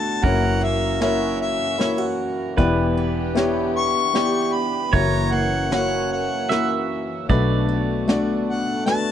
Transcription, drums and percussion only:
0.24 kick medium
0.24 closed hi-hat soft
1.01 snare medium
1.01 closed hi-hat medium
1.80 snare medium
1.80 closed hi-hat soft
2.57 kick medium
2.57 closed hi-hat soft
3.36 snare medium
3.36 closed hi-hat medium
4.15 snare medium
4.15 closed hi-hat soft
4.93 kick medium
4.93 closed hi-hat soft
5.72 snare medium
5.72 closed hi-hat medium
6.51 snare medium
6.51 closed hi-hat soft
7.29 kick medium
7.29 closed hi-hat soft
8.08 snare medium
8.08 closed hi-hat soft
8.87 snare medium
8.87 closed hi-hat soft

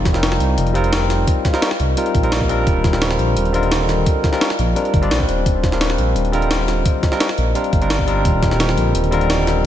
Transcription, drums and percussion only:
0.05 kick loud
0.05 snare soft
0.05 closed hi-hat medium
0.14 snare soft
0.23 snare loud
0.23 closed hi-hat loud
0.32 snare medium
0.40 closed hi-hat medium
0.58 closed hi-hat loud
0.67 closed hi-hat soft
0.75 closed hi-hat medium
0.84 closed hi-hat soft
0.93 snare loud
0.93 closed hi-hat medium
1.10 snare soft
1.10 closed hi-hat medium
1.27 kick loud
1.27 closed hi-hat loud
1.45 kick loud
1.45 snare soft
1.45 closed hi-hat medium
1.54 snare soft
1.62 snare loud
1.62 closed hi-hat loud
1.71 snare soft
1.80 closed hi-hat medium
1.97 closed hi-hat medium
2.06 closed hi-hat soft
2.15 kick loud
2.15 closed hi-hat medium
2.23 closed hi-hat soft
2.32 snare loud
2.32 closed hi-hat medium
2.41 kick medium
2.49 closed hi-hat medium
2.67 kick loud
2.67 closed hi-hat medium
2.84 kick loud
2.84 snare soft
2.84 closed hi-hat medium
2.93 snare soft
3.02 snare loud
3.02 closed hi-hat medium
3.11 snare medium
3.19 closed hi-hat medium
3.37 closed hi-hat medium
3.45 closed hi-hat soft
3.54 closed hi-hat medium
3.63 closed hi-hat soft
3.72 snare loud
3.72 closed hi-hat medium
3.89 snare soft
3.89 closed hi-hat medium
4.06 kick loud
4.06 closed hi-hat medium
4.24 kick loud
4.24 snare soft
4.24 closed hi-hat medium
4.33 snare soft
4.41 snare loud
4.41 closed hi-hat medium
4.50 snare medium
4.59 closed hi-hat medium
4.76 closed hi-hat medium
4.85 closed hi-hat soft
4.94 kick loud
4.94 closed hi-hat medium
5.03 closed hi-hat soft
5.11 snare loud
5.11 closed hi-hat medium
5.20 kick medium
5.29 closed hi-hat medium
5.46 kick loud
5.46 closed hi-hat medium
5.63 kick loud
5.63 snare soft
5.63 closed hi-hat medium
5.72 snare soft
5.81 snare loud
5.81 closed hi-hat medium
5.90 snare soft
5.98 closed hi-hat medium
6.16 closed hi-hat medium
6.25 closed hi-hat soft
6.33 closed hi-hat medium
6.42 closed hi-hat soft
6.51 snare loud
6.51 closed hi-hat medium
6.68 snare soft
6.68 closed hi-hat medium
6.86 kick loud
6.86 closed hi-hat loud
7.03 kick loud
7.03 snare soft
7.03 closed hi-hat medium
7.12 snare soft
7.20 snare loud
7.20 closed hi-hat medium
7.29 snare soft
7.38 closed hi-hat medium
7.55 closed hi-hat medium
7.64 closed hi-hat soft
7.73 kick loud
7.73 closed hi-hat medium
7.82 closed hi-hat soft
7.90 snare loud
7.90 closed hi-hat medium
7.99 kick medium
8.08 closed hi-hat medium
8.25 kick loud
8.25 closed hi-hat loud
8.43 kick loud
8.43 snare soft
8.43 closed hi-hat medium
8.51 snare soft
8.60 snare loud
8.60 closed hi-hat loud
8.69 snare soft
8.77 closed hi-hat medium
8.95 closed hi-hat loud
9.04 closed hi-hat soft
9.12 closed hi-hat medium
9.21 closed hi-hat soft
9.30 snare loud
9.30 closed hi-hat loud
9.47 snare soft
9.47 closed hi-hat medium

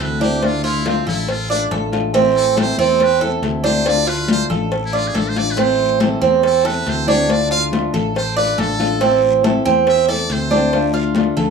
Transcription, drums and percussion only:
0.00 cowbell medium
0.00 high conga soft
0.00 short guiro medium
0.21 high conga medium
0.21 short guiro medium
0.42 cowbell loud
0.42 high conga soft
0.42 long guiro medium
0.65 high conga soft
0.86 cowbell medium
0.86 high conga loud
0.86 short guiro medium
1.07 high conga soft
1.07 low conga medium
1.07 short guiro medium
1.28 cowbell medium
1.28 high conga soft
1.28 long guiro medium
1.50 high conga soft
1.71 cowbell medium
1.71 high conga medium
1.71 short guiro medium
1.93 cowbell medium
1.93 high conga medium
1.93 short guiro medium
2.14 cowbell loud
2.14 high conga soft
2.14 long guiro medium
2.36 high conga soft
2.57 cowbell medium
2.57 high conga loud
2.57 short guiro medium
2.78 high conga soft
2.78 short guiro medium
3.00 cowbell medium
3.00 high conga soft
3.00 long guiro medium
3.22 high conga soft
3.43 cowbell medium
3.43 high conga soft
3.43 short guiro medium
3.64 high conga medium
3.64 short guiro medium
3.86 cowbell loud
3.86 long guiro medium
4.07 high conga soft
4.28 cowbell medium
4.28 high conga loud
4.28 short guiro medium
4.50 high conga soft
4.50 low conga medium
4.50 short guiro medium
4.72 cowbell loud
4.72 high conga soft
4.72 long guiro medium
4.94 high conga soft
5.15 cowbell medium
5.15 high conga medium
5.15 short guiro medium
5.36 cowbell medium
5.36 high conga medium
5.36 short guiro medium
5.58 cowbell loud
5.58 high conga soft
5.58 long guiro medium
5.79 high conga soft
6.00 cowbell medium
6.00 high conga loud
6.00 short guiro medium
6.22 high conga soft
6.22 short guiro medium
6.43 cowbell loud
6.43 high conga soft
6.43 long guiro medium
6.65 high conga soft
6.86 cowbell medium
6.86 high conga soft
6.86 short guiro medium
7.07 high conga medium
7.07 short guiro medium
7.29 cowbell loud
7.29 high conga soft
7.29 long guiro medium
7.51 high conga soft
7.73 cowbell medium
7.73 high conga loud
7.73 short guiro medium
7.94 high conga soft
7.94 low conga medium
7.94 short guiro medium
8.16 cowbell loud
8.16 high conga soft
8.16 long guiro medium
8.37 high conga soft
8.58 cowbell medium
8.58 high conga medium
8.58 short guiro medium
8.80 cowbell medium
8.80 high conga medium
8.80 short guiro medium
9.01 cowbell loud
9.01 high conga soft
9.01 long guiro medium
9.23 high conga soft
9.44 cowbell medium
9.44 high conga loud
9.44 short guiro medium
9.66 short guiro medium
9.87 cowbell loud
9.87 high conga soft
9.87 long guiro medium
10.08 high conga soft
10.29 cowbell medium
10.29 high conga soft
10.29 short guiro medium
10.51 high conga medium
10.51 short guiro medium
10.73 cowbell loud
10.73 high conga soft
10.73 long guiro medium
10.95 high conga soft
11.15 cowbell medium
11.15 high conga loud
11.15 short guiro medium
11.37 high conga soft
11.37 low conga medium
11.37 short guiro medium

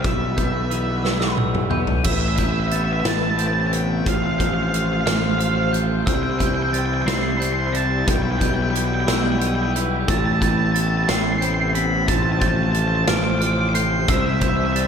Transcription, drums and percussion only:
0.04 kick medium
0.04 closed hi-hat medium
0.38 kick medium
0.38 closed hi-hat soft
0.71 closed hi-hat soft
1.05 snare soft
1.21 snare soft
1.38 high tom medium
1.55 mid tom medium
1.71 mid tom medium
1.87 floor tom medium
2.04 kick medium
2.04 crash medium
2.38 kick medium
2.38 closed hi-hat medium
2.71 closed hi-hat medium
3.05 snare medium
3.05 closed hi-hat medium
3.39 closed hi-hat medium
3.73 closed hi-hat medium
4.06 kick medium
4.06 closed hi-hat medium
4.40 kick medium
4.40 closed hi-hat medium
4.74 closed hi-hat medium
5.07 snare loud
5.07 closed hi-hat medium
5.40 closed hi-hat medium
5.74 closed hi-hat medium
6.07 kick medium
6.07 closed hi-hat medium
6.40 kick medium
6.40 closed hi-hat medium
6.74 closed hi-hat medium
7.08 snare medium
7.08 closed hi-hat medium
7.42 closed hi-hat medium
7.75 closed hi-hat medium
8.08 kick loud
8.08 closed hi-hat medium
8.41 kick medium
8.41 closed hi-hat medium
8.75 closed hi-hat medium
9.08 snare loud
9.08 closed hi-hat medium
9.41 closed hi-hat medium
9.76 closed hi-hat medium
10.08 kick medium
10.08 closed hi-hat medium
10.42 kick medium
10.42 closed hi-hat medium
10.76 closed hi-hat medium
11.09 snare loud
11.09 closed hi-hat medium
11.42 closed hi-hat medium
11.75 closed hi-hat medium
12.08 kick medium
12.08 closed hi-hat medium
12.41 kick medium
12.41 closed hi-hat medium
12.75 closed hi-hat medium
13.08 snare loud
13.08 closed hi-hat medium
13.42 closed hi-hat medium
13.75 closed hi-hat medium
14.08 kick loud
14.08 closed hi-hat medium
14.41 kick medium
14.41 closed hi-hat medium
14.76 closed hi-hat medium

